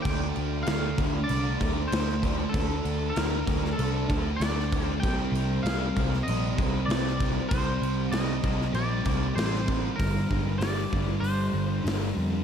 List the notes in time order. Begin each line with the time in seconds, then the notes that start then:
0.02 D2 D3 G5, kick, crash
0.07 A3 D4
0.36 D2, crash
0.63 F5, crash
0.67 D2, snare
0.98 D2 A3 D4, kick, crash
1.24 D5
1.28 C2 D3 A3 D4, crash
1.60 D2 A3 D4, kick, crash
1.88 D3 C5
1.92 D2 A3 D4, snare, crash
2.08 snare
2.21 A3 D4, kick, crash
2.49 D3 A4
2.54 D2 A3 D4, kick, crash
2.85 D2, crash
3.10 A#4
3.16 D2, snare, crash
3.47 D2 A3 D4, kick, crash
3.65 snare
3.73 A4
3.77 C2 D3 A3, crash
3.82 D4
4.08 D2 A3 D4, kick, crash
4.37 D2 D5
4.41 D3 A3 D4, snare, crash
4.59 snare
4.71 A3 D4, kick, crash
4.87 C5
5.00 C2 C3 G5, kick
5.04 G3 C4, crash
5.32 C2, crash
5.63 C2 F5, snare, crash
5.96 C2 G3 C4, kick, crash
6.13 snare
6.23 D#5
6.27 A#1 C3 G3 C4, crash
6.58 C2 G3 C4, kick, crash
6.86 C2 C3 D5
6.90 G3 C4, snare, crash
7.07 snare
7.19 G3 C4, kick, crash
7.49 C2 C3 G3 C5, kick, crash
7.53 C4
7.82 C2, crash
8.12 C2 D#5, snare, crash
8.42 C2 G3 C4, kick, crash
8.61 snare
8.73 A#1 C3 G3 C4 D5, crash
9.05 C2 G3 C4, kick, crash
9.33 A1 C3 G3 C4 C5
9.38 snare, crash
9.54 snare
9.66 G3 C4, kick, crash
9.95 G2 D3 A#4
9.99 G1 G3, kick, open hi-hat
10.26 G2 D3 G3
10.31 G1, kick
10.44 D3 G3
10.58 G1 G2 D3 G3 D5, open hi-hat
10.62 snare
10.91 G1 G2 D3 G3, kick
11.06 D3 G3
11.20 G1 C5, open hi-hat
11.52 G1 G2 D3 G3
11.69 D3 G3
11.82 G1 G2 D3 G3
11.87 snare, open hi-hat
12.00 D3 G3
12.09 A#4
12.14 F2 G2 D3 G3
12.31 D3 G3